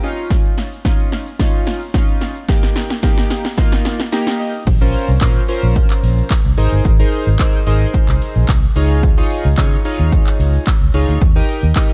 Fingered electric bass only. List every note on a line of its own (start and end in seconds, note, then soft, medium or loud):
4.67 4.93 A#1 loud
5.09 5.17 C2 medium
5.21 5.39 A#2 loud
5.63 5.80 A#1 medium
6.03 6.21 A#1 medium
6.45 6.53 C2 loud
6.58 6.67 G#1 loud
6.72 6.80 G1 medium
6.85 7.02 G#1 loud
7.27 7.35 G#1 loud
7.67 7.84 G#1 medium
8.09 8.17 C2 medium
8.36 8.44 A#1 medium
8.49 8.66 C2 loud
8.76 9.19 C#2 loud
9.45 9.53 C#2 medium
9.58 9.75 C#3 loud
10.00 10.17 D#2 medium
10.40 10.57 C#2 medium
10.81 10.89 C#2 medium
10.94 11.03 C#2 medium
11.09 11.17 D2 medium
11.22 11.39 D#2 loud
11.63 11.71 D#2 loud